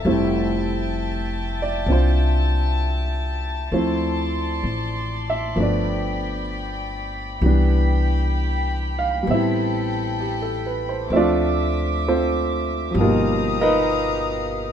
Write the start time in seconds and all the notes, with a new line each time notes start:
Already playing: E5
0.05 F1 G3 A3 C4 E4 G5 A5
1.62 D5
1.86 C2 C4 D4
1.91 F4 C5
3.71 D2 F3 A3 C4 E4 D5 C6
4.63 A1
5.30 E5
5.56 G1 F3 A3 B3 G5 B5
5.60 D4 D5
7.41 C2 E3 G3 B3 G4 G5
7.46 D4
8.99 F5
9.23 G3 B3 A4 G5
9.27 A1 C4 E5
9.34 E4
10.21 G4
10.42 A4
10.66 B4
10.89 C5
11.09 D2 F3 A3 C4 E5 D6
11.13 F4 A4 D5 E5
11.17 D4
12.08 C4 F4 A4 C5
12.91 G1 F3 G3 G4 D#6
12.95 B2 F5 A#5
13.01 A#3 D#4 F4 G4 A#4
13.61 D#4 A#4 B4 D#5